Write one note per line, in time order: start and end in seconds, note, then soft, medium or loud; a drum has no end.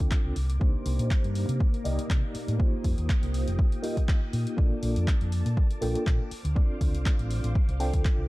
0.00 0.10 D2 medium
0.00 0.35 C4 medium
0.00 0.35 D4 medium
0.00 0.35 F4 medium
0.00 0.35 A4 medium
0.00 0.35 C5 medium
0.00 0.35 F5 medium
0.00 0.35 G5 loud
0.00 2.56 D6 medium
0.00 kick medium
0.11 kick loud
0.11 clap loud
0.25 0.35 C2 medium
0.36 0.58 C2 medium
0.36 6.27 A#3 medium
0.36 open hi-hat medium
0.50 closed hi-hat medium
0.60 0.73 C2 loud
0.60 1.82 A#3 medium
0.60 1.82 D4 medium
0.60 1.82 D#4 medium
0.60 1.82 G4 medium
0.60 1.83 C5 loud
0.60 kick loud
0.86 0.97 C2 loud
0.86 open hi-hat loud
0.99 1.09 A#2 loud
0.99 closed hi-hat medium
1.11 kick loud
1.11 clap loud
1.24 1.45 G2 medium
1.24 closed hi-hat medium
1.35 open hi-hat medium
1.49 1.58 C3 medium
1.49 closed hi-hat medium
1.60 kick loud
1.74 closed hi-hat soft
1.84 1.96 C2 medium
1.84 2.56 A#3 loud
1.84 2.57 D#4 medium
1.84 2.57 G4 medium
1.84 2.56 D5 medium
1.84 2.57 D#5 loud
1.84 open hi-hat loud
1.98 muted fingered electric bass stroke soft
1.98 closed hi-hat medium
2.10 2.21 C3 medium
2.10 kick loud
2.10 clap loud
2.35 muted fingered electric bass stroke soft
2.35 open hi-hat medium
2.48 2.58 A2 loud
2.48 closed hi-hat medium
2.59 3.80 A#3 medium
2.59 3.81 D#4 medium
2.59 3.81 F4 medium
2.59 3.81 G4 medium
2.59 3.81 C5 loud
2.59 4.56 G5 medium
2.59 4.56 D#6 medium
2.59 kick loud
2.73 muted fingered electric bass stroke soft
2.84 2.96 F2 loud
2.84 kick medium
2.84 open hi-hat loud
2.98 3.07 D#2 loud
2.98 closed hi-hat medium
3.09 kick loud
3.09 clap loud
3.23 3.43 C2 medium
3.23 closed hi-hat soft
3.34 open hi-hat medium
3.47 3.57 F1 medium
3.47 closed hi-hat medium
3.59 kick loud
3.72 closed hi-hat soft
3.82 4.55 A#3 loud
3.82 4.55 D#4 medium
3.82 4.55 F4 medium
3.82 4.55 G4 medium
3.82 4.55 D#5 loud
3.82 open hi-hat loud
3.97 kick medium
3.97 closed hi-hat medium
4.08 kick loud
4.08 clap loud
4.33 4.45 A#2 medium
4.33 open hi-hat medium
4.47 closed hi-hat medium
4.57 4.69 A#1 loud
4.57 5.79 A#3 medium
4.57 5.79 D4 medium
4.57 5.79 F4 medium
4.57 5.79 A4 medium
4.57 5.79 D5 loud
4.57 6.30 A5 medium
4.57 8.28 D6 medium
4.57 kick loud
4.83 4.94 A#1 loud
4.83 open hi-hat loud
4.96 5.06 F2 loud
4.96 closed hi-hat medium
5.08 kick loud
5.08 clap loud
5.21 5.42 F2 medium
5.21 closed hi-hat soft
5.32 open hi-hat medium
5.46 5.55 A#2 medium
5.46 closed hi-hat medium
5.57 kick loud
5.71 closed hi-hat soft
5.81 5.93 A#1 medium
5.81 6.30 A#3 loud
5.81 6.30 D4 medium
5.81 6.30 F4 medium
5.81 6.30 A4 medium
5.81 6.30 G5 loud
5.81 open hi-hat loud
5.95 muted fingered electric bass stroke soft
5.95 closed hi-hat medium
6.07 6.18 A#2 medium
6.07 kick loud
6.07 clap loud
6.31 8.28 C5 medium
6.31 8.28 F5 medium
6.31 muted fingered electric bass stroke soft
6.31 open hi-hat medium
6.45 6.54 D2 loud
6.45 closed hi-hat medium
6.55 7.77 C4 medium
6.55 7.77 D4 medium
6.55 7.78 F4 medium
6.55 7.78 A4 medium
6.55 7.78 D5 loud
6.55 kick loud
6.70 muted fingered electric bass stroke soft
6.81 6.92 D2 loud
6.81 kick medium
6.81 open hi-hat loud
6.94 7.04 C2 loud
6.94 closed hi-hat medium
7.06 kick loud
7.06 clap loud
7.19 7.40 A1 medium
7.19 closed hi-hat medium
7.31 open hi-hat medium
7.44 7.54 A1 medium
7.44 closed hi-hat medium
7.55 kick loud
7.69 7.89 C2 loud
7.69 closed hi-hat medium
7.80 8.28 C4 loud
7.80 8.28 D4 medium
7.80 8.28 F4 medium
7.80 8.28 A4 medium
7.80 8.28 G5 loud
7.80 open hi-hat loud
7.94 8.03 D2 loud
7.94 kick medium
7.94 closed hi-hat medium
8.05 kick loud
8.05 clap loud
8.18 8.28 C2 medium